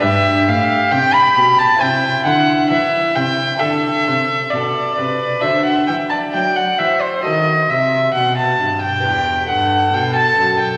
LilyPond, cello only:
\new Staff \with { instrumentName = "Cello" } { \clef bass \time 4/4 \key d \mixolydian \tempo 4 = 67 g,8 a,8 c8 b,8 c8 d8 e8 c8 | d8 c8 b,8 c8 d8 e8 fis8 e8 | \key e \minor dis8 c8 b,8 g,8 e,8 g,8 b,8 fis,8 | }